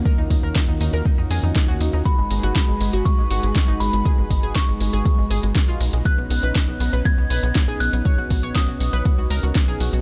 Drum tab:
HH |--o---o---o---o-|x-oxx-oxx-oxx-ox|x-oxx-oxx-oxx-ox|x-oxx-oxx-oxx-ox|
SD |----o-------o---|----o-------o---|----o-------o---|----o-------o---|
BD |o-o-o---o---o---|o---o---o---o---|o-o-o---o---o---|o---o---o---o---|

HH |x-oxxxoxx-oxx-ox|
SD |----o-------o---|
BD |o-o-o---o---o---|